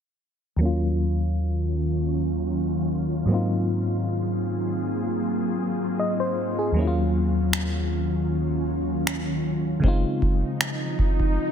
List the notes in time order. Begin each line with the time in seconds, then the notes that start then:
0.57 D#2 D#3 F#3 C#4 F4
0.61 A#3 C#4
0.65 F4
3.25 G#2 F#3 A#3 C4
3.30 A#3 C4 D#4 G#4
3.34 F4
5.99 D#5
6.20 C5
6.59 G#4
6.72 D#2 F#3
6.76 D#3 A#3 C#4
6.81 E4
6.87 F4
7.53 finger snap
9.07 finger snap
9.80 C#3 G#3, kick, swell
9.84 C#3 F3 C4 D#4
9.88 F4
10.22 kick
10.61 finger snap
10.99 kick
11.20 kick